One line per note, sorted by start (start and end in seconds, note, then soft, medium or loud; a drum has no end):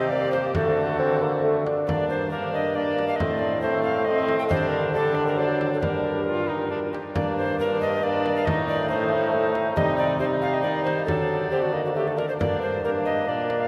0.00 0.52 C3 medium
0.00 0.14 C4 medium
0.00 0.57 G4 medium
0.00 0.11 D#5 loud
0.10 0.56 A#3 medium
0.10 0.31 D5 loud
0.32 0.55 C5 loud
0.32 frame drum medium
0.55 1.64 D3 medium
0.55 0.95 A3 medium
0.55 1.68 F#4 medium
0.55 1.42 A4 loud
0.55 frame drum medium
0.99 1.23 C4 loud
1.22 1.43 A#3 medium
1.44 1.65 A3 medium
1.66 1.87 D4 medium
1.66 frame drum medium
1.87 3.15 G2 medium
1.87 2.29 A#3 medium
1.87 2.29 D4 medium
1.87 2.08 D5 medium
1.87 frame drum medium
2.09 2.30 C5 loud
2.31 2.75 A#3 medium
2.31 2.75 D4 medium
2.31 2.53 A#4 loud
2.54 2.77 D#5 loud
2.75 3.22 A#3 medium
2.75 3.21 D4 medium
2.75 3.07 D5 loud
2.99 frame drum medium
3.07 3.17 F5 loud
3.16 4.47 A2 medium
3.16 3.63 C4 medium
3.16 3.40 D#5 loud
3.20 3.51 A3 medium
3.20 frame drum medium
3.39 3.61 D5 loud
3.61 4.06 A3 medium
3.61 4.06 C4 medium
3.61 3.82 C5 loud
3.83 4.06 F5 loud
4.05 4.52 A3 medium
4.05 4.50 C4 medium
4.05 4.38 D#5 loud
4.28 frame drum medium
4.39 4.44 G5 loud
4.49 5.80 D3 medium
4.49 4.93 G3 medium
4.49 4.94 D4 medium
4.49 4.71 C5 loud
4.49 frame drum medium
4.69 4.92 A#4 loud
4.94 5.39 G3 medium
4.94 5.38 D4 medium
4.94 5.16 A4 loud
5.15 5.26 D5 loud
5.27 5.39 A#4 loud
5.38 5.85 F#3 medium
5.38 5.81 D4 medium
5.38 5.71 C5 medium
5.61 frame drum medium
5.73 5.80 A4 medium
5.81 6.91 G2 medium
5.81 6.94 G3 medium
5.81 6.22 D4 medium
5.81 6.90 A#4 medium
5.81 frame drum medium
6.26 6.50 F4 medium
6.49 6.70 D#4 medium
6.71 6.79 D4 medium
6.93 7.01 G4 medium
6.93 frame drum medium
7.15 8.42 G2 medium
7.15 7.56 A#3 medium
7.15 7.57 D4 medium
7.15 7.36 D5 medium
7.15 frame drum medium
7.37 7.59 C5 loud
7.59 8.02 A#3 medium
7.59 8.02 D4 medium
7.59 7.80 A#4 loud
7.81 8.05 D#5 loud
8.03 8.48 A#3 medium
8.03 8.46 D4 medium
8.03 8.35 D5 loud
8.26 frame drum medium
8.36 8.47 F5 loud
8.45 9.75 A2 medium
8.45 8.89 A3 medium
8.45 8.89 D#4 medium
8.45 8.68 D#5 loud
8.45 frame drum medium
8.68 8.89 D5 loud
8.89 9.75 A3 medium
8.89 9.75 D#4 medium
8.89 9.54 C5 loud
9.55 frame drum medium
9.76 10.65 C3 medium
9.76 10.17 G3 medium
9.76 10.18 D#4 medium
9.76 9.96 D#5 loud
9.76 frame drum medium
9.98 10.18 D5 loud
10.19 11.06 G3 medium
10.19 11.10 D#4 medium
10.19 10.25 C5 loud
10.42 10.55 F5 loud
10.54 10.61 D#5 medium
10.62 11.08 D#3 medium
10.62 10.83 D5 loud
10.84 11.05 C5 loud
10.84 frame drum medium
11.06 12.16 D3 medium
11.06 11.47 F#3 medium
11.06 12.20 D4 medium
11.06 11.50 A4 medium
11.06 frame drum medium
11.50 11.74 C4 loud
11.50 11.63 G4 medium
11.62 11.74 F#4 medium
11.73 11.96 A#3 medium
11.73 11.84 D#5 medium
11.85 11.90 F#4 medium
11.95 12.19 A3 medium
11.95 12.09 G4 loud
12.08 12.16 A4 medium
12.16 12.40 D4 medium
12.16 12.28 A#4 medium
12.16 frame drum medium
12.29 12.34 C5 medium
12.39 13.29 G2 medium
12.39 12.81 A#3 medium
12.39 12.82 D4 medium
12.39 12.61 D5 loud
12.39 frame drum medium
12.62 12.83 C5 loud
12.84 13.27 A#3 medium
12.84 13.27 D4 medium
12.84 12.90 A#4 loud
13.05 13.30 D#5 loud
13.27 13.68 A#2 medium
13.27 13.68 A#3 medium
13.27 13.68 D4 medium
13.27 13.62 D5 loud
13.50 frame drum medium
13.60 13.68 F5 loud